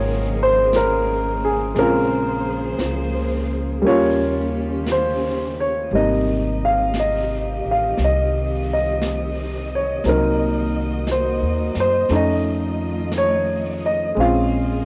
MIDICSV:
0, 0, Header, 1, 5, 480
1, 0, Start_track
1, 0, Key_signature, -4, "major"
1, 0, Tempo, 1032702
1, 815, Time_signature, 4, 2, 24, 8
1, 6902, End_track
2, 0, Start_track
2, 0, Title_t, "Grand piano"
2, 0, Program_c, 0, 0
2, 0, Control_c, 0, 64, 127
2, 0, Note_on_c, 0, 56, 63
2, 0, Note_on_c, 0, 58, 52
2, 0, Note_on_c, 0, 63, 54
2, 0, Note_on_c, 0, 65, 62
2, 0, Note_on_c, 0, 73, 81
2, 0, Note_on_c, 0, 75, 79
2, 0, Note_on_c, 0, 77, 92
2, 0, Note_on_c, 0, 78, 63
2, 0, Note_on_c, 0, 79, 89
2, 195, Note_off_c, 0, 73, 0
2, 199, Note_on_c, 0, 72, 83
2, 339, Note_off_c, 0, 72, 0
2, 354, Note_on_c, 0, 70, 80
2, 642, Note_off_c, 0, 70, 0
2, 672, Note_on_c, 0, 68, 72
2, 803, Note_off_c, 0, 56, 0
2, 810, Note_on_c, 0, 56, 49
2, 821, Control_c, 0, 64, 0
2, 822, Note_off_c, 0, 58, 0
2, 822, Note_off_c, 0, 78, 0
2, 823, Note_off_c, 0, 77, 0
2, 823, Note_off_c, 0, 79, 0
2, 824, Note_off_c, 0, 63, 0
2, 824, Note_on_c, 0, 60, 41
2, 825, Note_off_c, 0, 75, 0
2, 826, Note_off_c, 0, 65, 0
2, 829, Note_off_c, 0, 68, 0
2, 829, Note_on_c, 0, 61, 39
2, 830, Note_on_c, 0, 70, 84
2, 840, Note_on_c, 0, 65, 54
2, 893, Control_c, 0, 64, 127
2, 1772, Note_off_c, 0, 56, 0
2, 1773, Note_on_c, 0, 55, 55
2, 1779, Note_off_c, 0, 60, 0
2, 1781, Note_off_c, 0, 61, 0
2, 1781, Control_c, 0, 64, 0
2, 1785, Note_on_c, 0, 58, 51
2, 1787, Note_off_c, 0, 65, 0
2, 1788, Note_on_c, 0, 61, 52
2, 1796, Note_on_c, 0, 73, 80
2, 1800, Note_on_c, 0, 65, 64
2, 1811, Note_off_c, 0, 70, 0
2, 1869, Control_c, 0, 64, 127
2, 2286, Note_on_c, 0, 72, 68
2, 2576, Note_off_c, 0, 73, 0
2, 2577, Note_off_c, 0, 72, 0
2, 2606, Note_on_c, 0, 73, 64
2, 2748, Note_off_c, 0, 55, 0
2, 2749, Note_off_c, 0, 73, 0
2, 2754, Note_off_c, 0, 58, 0
2, 2755, Note_off_c, 0, 61, 0
2, 2755, Control_c, 0, 64, 0
2, 2756, Note_on_c, 0, 55, 42
2, 2761, Note_off_c, 0, 65, 0
2, 2762, Note_on_c, 0, 48, 37
2, 2763, Note_on_c, 0, 58, 39
2, 2768, Note_on_c, 0, 63, 46
2, 2768, Note_on_c, 0, 75, 74
2, 2822, Control_c, 0, 64, 127
2, 3057, Note_off_c, 0, 75, 0
2, 3091, Note_on_c, 0, 77, 73
2, 3232, Note_off_c, 0, 77, 0
2, 3252, Note_on_c, 0, 75, 70
2, 3567, Note_off_c, 0, 75, 0
2, 3585, Note_on_c, 0, 77, 67
2, 3720, Note_off_c, 0, 77, 0
2, 3739, Note_on_c, 0, 75, 73
2, 4051, Note_off_c, 0, 75, 0
2, 4059, Note_on_c, 0, 75, 73
2, 4505, Note_off_c, 0, 75, 0
2, 4533, Note_on_c, 0, 73, 64
2, 4673, Note_off_c, 0, 73, 0
2, 4674, Note_off_c, 0, 58, 0
2, 4675, Note_off_c, 0, 55, 0
2, 4675, Note_on_c, 0, 54, 43
2, 4676, Note_off_c, 0, 63, 0
2, 4677, Control_c, 0, 64, 0
2, 4678, Note_off_c, 0, 48, 0
2, 4681, Note_on_c, 0, 58, 42
2, 4683, Note_on_c, 0, 60, 38
2, 4683, Note_on_c, 0, 63, 50
2, 4691, Note_on_c, 0, 70, 71
2, 4765, Control_c, 0, 64, 127
2, 5166, Note_on_c, 0, 72, 64
2, 5174, Note_off_c, 0, 70, 0
2, 5479, Note_off_c, 0, 72, 0
2, 5486, Note_on_c, 0, 72, 76
2, 5626, Note_on_c, 0, 57, 50
2, 5626, Note_on_c, 0, 61, 49
2, 5627, Note_off_c, 0, 63, 0
2, 5627, Note_off_c, 0, 72, 0
2, 5630, Note_off_c, 0, 54, 0
2, 5633, Note_off_c, 0, 58, 0
2, 5634, Note_off_c, 0, 60, 0
2, 5634, Control_c, 0, 64, 0
2, 5634, Note_on_c, 0, 63, 54
2, 5650, Note_on_c, 0, 75, 80
2, 5725, Control_c, 0, 64, 127
2, 6124, Note_on_c, 0, 73, 78
2, 6128, Note_off_c, 0, 75, 0
2, 6410, Note_off_c, 0, 73, 0
2, 6441, Note_on_c, 0, 75, 72
2, 6577, Note_on_c, 0, 56, 49
2, 6581, Note_off_c, 0, 57, 0
2, 6581, Note_off_c, 0, 61, 0
2, 6585, Note_off_c, 0, 63, 0
2, 6585, Note_on_c, 0, 60, 49
2, 6587, Control_c, 0, 64, 0
2, 6594, Note_on_c, 0, 61, 44
2, 6598, Note_off_c, 0, 75, 0
2, 6600, Note_on_c, 0, 65, 53
2, 6601, Note_on_c, 0, 77, 78
2, 6677, Control_c, 0, 64, 127
2, 6902, Note_off_c, 0, 56, 0
2, 6902, Note_off_c, 0, 60, 0
2, 6902, Note_off_c, 0, 61, 0
2, 6902, Note_off_c, 0, 65, 0
2, 6902, Note_off_c, 0, 77, 0
2, 6902, End_track
3, 0, Start_track
3, 0, Title_t, "Cello section"
3, 0, Program_c, 1, 48
3, 0, Note_on_c, 1, 49, 62
3, 0, Note_on_c, 1, 53, 65
3, 0, Note_on_c, 1, 58, 61
3, 0, Note_on_c, 1, 68, 64
3, 0, Note_on_c, 1, 70, 77
3, 791, Note_off_c, 1, 70, 0
3, 794, Note_off_c, 1, 53, 0
3, 807, Note_off_c, 1, 68, 0
3, 814, Note_on_c, 1, 68, 61
3, 817, Note_on_c, 1, 53, 64
3, 817, Note_on_c, 1, 72, 80
3, 1764, Note_off_c, 1, 68, 0
3, 1766, Note_off_c, 1, 53, 0
3, 1766, Note_off_c, 1, 72, 0
3, 1771, Note_on_c, 1, 61, 79
3, 1771, Note_on_c, 1, 67, 61
3, 1774, Note_on_c, 1, 51, 64
3, 2731, Note_off_c, 1, 49, 0
3, 2732, Note_off_c, 1, 58, 0
3, 2737, Note_off_c, 1, 61, 0
3, 2737, Note_off_c, 1, 67, 0
3, 2738, Note_off_c, 1, 51, 0
3, 2744, Note_on_c, 1, 75, 69
3, 2746, Note_on_c, 1, 67, 55
3, 2747, Note_on_c, 1, 48, 56
3, 2749, Note_on_c, 1, 51, 62
3, 4651, Note_off_c, 1, 67, 0
3, 4679, Note_on_c, 1, 58, 65
3, 4682, Note_on_c, 1, 66, 61
3, 5608, Note_off_c, 1, 48, 0
3, 5609, Note_off_c, 1, 51, 0
3, 5622, Note_off_c, 1, 58, 0
3, 5624, Note_off_c, 1, 66, 0
3, 5624, Note_on_c, 1, 51, 62
3, 5625, Note_on_c, 1, 57, 60
3, 5625, Note_on_c, 1, 65, 59
3, 6570, Note_off_c, 1, 51, 0
3, 6571, Note_off_c, 1, 57, 0
3, 6571, Note_off_c, 1, 65, 0
3, 6578, Note_on_c, 1, 53, 65
3, 6578, Note_on_c, 1, 58, 56
3, 6579, Note_on_c, 1, 68, 62
3, 6902, Note_off_c, 1, 53, 0
3, 6902, Note_off_c, 1, 58, 0
3, 6902, Note_off_c, 1, 68, 0
3, 6902, Note_off_c, 1, 75, 0
3, 6902, End_track
4, 0, Start_track
4, 0, Title_t, "Upright bass"
4, 0, Program_c, 2, 32
4, 0, Note_on_c, 2, 32, 82
4, 797, Note_off_c, 2, 32, 0
4, 814, Note_on_c, 2, 34, 80
4, 1274, Note_off_c, 2, 34, 0
4, 1294, Note_on_c, 2, 37, 65
4, 1756, Note_off_c, 2, 37, 0
4, 1777, Note_on_c, 2, 39, 78
4, 2731, Note_off_c, 2, 39, 0
4, 2748, Note_on_c, 2, 32, 75
4, 3528, Note_off_c, 2, 32, 0
4, 3552, Note_on_c, 2, 33, 54
4, 3703, Note_off_c, 2, 33, 0
4, 3711, Note_on_c, 2, 36, 74
4, 4652, Note_off_c, 2, 36, 0
4, 4670, Note_on_c, 2, 36, 77
4, 5290, Note_off_c, 2, 36, 0
4, 5308, Note_on_c, 2, 39, 57
4, 5457, Note_off_c, 2, 39, 0
4, 5465, Note_on_c, 2, 42, 62
4, 5614, Note_off_c, 2, 42, 0
4, 5623, Note_on_c, 2, 41, 78
4, 6561, Note_off_c, 2, 41, 0
4, 6583, Note_on_c, 2, 34, 81
4, 6902, Note_off_c, 2, 34, 0
4, 6902, End_track
5, 0, Start_track
5, 0, Title_t, "Drums"
5, 339, Note_on_c, 9, 25, 30
5, 339, Note_on_c, 9, 38, 51
5, 339, Note_on_c, 9, 44, 54
5, 386, Note_off_c, 9, 38, 0
5, 386, Note_off_c, 9, 44, 0
5, 816, Note_off_c, 9, 25, 0
5, 816, Note_on_c, 9, 25, 33
5, 816, Note_on_c, 9, 38, 31
5, 863, Note_off_c, 9, 38, 0
5, 1294, Note_off_c, 9, 25, 0
5, 1294, Note_on_c, 9, 25, 38
5, 1294, Note_on_c, 9, 38, 52
5, 1294, Note_on_c, 9, 44, 66
5, 1341, Note_off_c, 9, 38, 0
5, 1341, Note_off_c, 9, 44, 0
5, 1774, Note_off_c, 9, 25, 0
5, 1774, Note_on_c, 9, 25, 37
5, 2261, Note_off_c, 9, 25, 0
5, 2261, Note_on_c, 9, 25, 42
5, 2261, Note_on_c, 9, 38, 47
5, 2261, Note_on_c, 9, 44, 51
5, 2308, Note_off_c, 9, 38, 0
5, 2308, Note_off_c, 9, 44, 0
5, 2748, Note_off_c, 9, 25, 0
5, 2748, Note_on_c, 9, 25, 27
5, 3225, Note_off_c, 9, 25, 0
5, 3225, Note_on_c, 9, 25, 39
5, 3225, Note_on_c, 9, 38, 44
5, 3225, Note_on_c, 9, 44, 58
5, 3271, Note_off_c, 9, 38, 0
5, 3271, Note_off_c, 9, 44, 0
5, 3706, Note_off_c, 9, 25, 0
5, 3706, Note_on_c, 9, 25, 37
5, 3706, Note_on_c, 9, 38, 27
5, 3752, Note_off_c, 9, 38, 0
5, 4190, Note_off_c, 9, 25, 0
5, 4190, Note_on_c, 9, 25, 33
5, 4190, Note_on_c, 9, 38, 44
5, 4190, Note_on_c, 9, 44, 51
5, 4236, Note_off_c, 9, 38, 0
5, 4236, Note_off_c, 9, 44, 0
5, 4666, Note_off_c, 9, 25, 0
5, 4666, Note_on_c, 9, 25, 32
5, 4666, Note_on_c, 9, 38, 26
5, 4713, Note_off_c, 9, 38, 0
5, 5145, Note_off_c, 9, 25, 0
5, 5145, Note_on_c, 9, 25, 33
5, 5145, Note_on_c, 9, 38, 40
5, 5145, Note_on_c, 9, 44, 54
5, 5192, Note_off_c, 9, 38, 0
5, 5192, Note_off_c, 9, 44, 0
5, 5461, Note_on_c, 9, 38, 27
5, 5507, Note_off_c, 9, 38, 0
5, 5618, Note_off_c, 9, 25, 0
5, 5618, Note_on_c, 9, 25, 39
5, 5618, Note_on_c, 9, 38, 27
5, 5665, Note_off_c, 9, 38, 0
5, 6097, Note_off_c, 9, 25, 0
5, 6097, Note_on_c, 9, 25, 33
5, 6097, Note_on_c, 9, 38, 37
5, 6097, Note_on_c, 9, 44, 42
5, 6143, Note_off_c, 9, 38, 0
5, 6143, Note_off_c, 9, 44, 0
5, 6579, Note_off_c, 9, 25, 0
5, 6579, Note_on_c, 9, 25, 35
5, 6902, Note_off_c, 9, 25, 0
5, 6902, End_track
0, 0, End_of_file